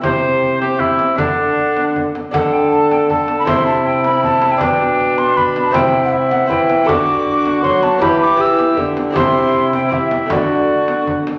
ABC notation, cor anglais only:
X:1
M:3/4
L:1/8
Q:1/4=158
K:Dmix
V:1 name="Cor anglais"
c3 G E2 | D4 z2 | A4 A2 | E2 E4 |
D4 D2 | E2 E2 E2 | F6 | G2 G3 z |
E4 E2 | F4- F z |]